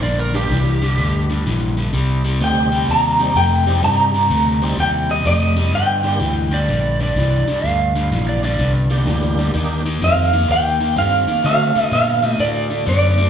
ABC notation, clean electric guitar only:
X:1
M:4/4
L:1/8
Q:"Swing" 1/4=126
K:Gm
V:1 name="Clean electric guitar"
z8 | z2 g2 b2 g2 | b4 g e e2 | g4 z4 |
z8 | z2 f2 g2 f2 | f2 f2 d2 d2 |]